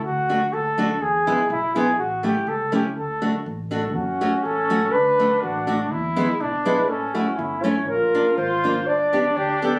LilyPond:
<<
  \new Staff \with { instrumentName = "Flugelhorn" } { \time 2/4 \key d \major \tempo 4 = 122 fis'4 a'4 | gis'4 e'8 gis'8 | fis'8 g'8 a'8 g'8 | a'4 r8 a'8 |
fis'4 a'4 | b'4 fis'8. r16 | r4. b'8 | a'8 fis'8 e'8 cis''8 |
bes'4 c''4 | d''4 g'8 a'8 | }
  \new Staff \with { instrumentName = "Trumpet" } { \time 2/4 \key d \major r2 | r2 | r2 | r2 |
cis'2 | d'2 | e'4 d'4 | cis'4. r8 |
f'2 | d'2 | }
  \new Staff \with { instrumentName = "Steel-string acoustic guitar" } { \time 2/4 \key d \major r8 <a d' fis'>8 r8 <a d' fis'>8 | r8 <gis b e'>8 r8 <gis b e'>8 | r8 <a cis' e'>8 r8 <a cis' e'>8 | r8 <a d' fis'>8 r8 <a d' fis'>8 |
r8 <a cis' fis'>8 r8 <a cis' fis'>8 | r8 <a d' fis'>8 r8 <a d' fis'>8 | r8 <gis b e'>8 r8 <gis b e'>8 | r8 <a cis' e'>8 r8 <a cis' e'>8 |
r8 <bes d' f'>8 r8 <bes d' f'>8 | r8 <b d' g'>8 r8 <b d' g'>8 | }
  \new Staff \with { instrumentName = "Upright bass" } { \clef bass \time 2/4 \key d \major d,4 d,4 | e,4 b,,4 | a,,4 cis,4 | d,4 a,,4 |
fis,4 a,,4 | d,4 a,,4 | e,4 b,,4 | a,,4 g,,4 |
bes,,4 gis,,4 | g,,4 d,4 | }
>>